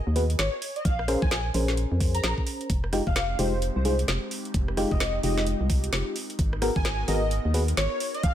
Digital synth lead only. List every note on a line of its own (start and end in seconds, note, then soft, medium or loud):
0.39 0.58 C#5 medium
0.76 0.83 D#5 medium
0.85 0.94 F5 medium
0.99 1.05 F5 medium
1.22 1.28 G#5 medium
1.31 1.40 G#5 medium
2.14 2.20 A#5 medium
2.23 2.33 A#5 medium
3.07 3.37 F5 medium
3.39 3.58 C5 medium
3.76 3.82 C5 medium
3.85 3.94 C5 medium
4.91 4.97 D#5 medium
5.01 5.10 D#5 medium
5.24 5.33 D#5 medium
5.38 5.43 D#5 medium
6.76 7.06 G#5 medium
7.08 7.27 D#5 medium
7.77 7.96 C#5 medium
8.14 8.22 D#5 medium
8.23 8.33 F5 medium